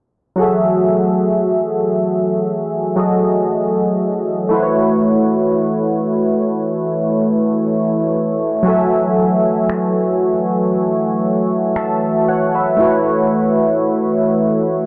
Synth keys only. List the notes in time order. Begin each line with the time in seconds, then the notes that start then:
0.36 F#3 F#4 G#4
0.41 A4 E5
2.96 F#3 F#4 G#4 A4 D#5
4.49 A3 E4 F#4
4.54 B4 C5
4.63 C#5
8.63 F#3 F#4 G#5
8.68 A4 E5
11.77 E5 A5
12.28 C#5 F#5
12.55 B4 E5
12.77 A3 E4 F#4
12.82 B4 C#5